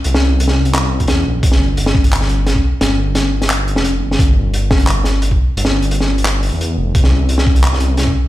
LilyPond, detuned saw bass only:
\new Staff \with { instrumentName = "Detuned saw bass" } { \clef bass \time 4/4 \key g \dorian \tempo 4 = 174 c,2~ c,8. bes,,16 e,8 bes,,8 | g,,2.~ g,,8 r8 | g,,2~ g,,8. f,,8. g,,8 | g,,2.~ g,,8 r8 |
g,,2~ g,,8. e,8. f,,8 | c,2.~ c,8 r8 | }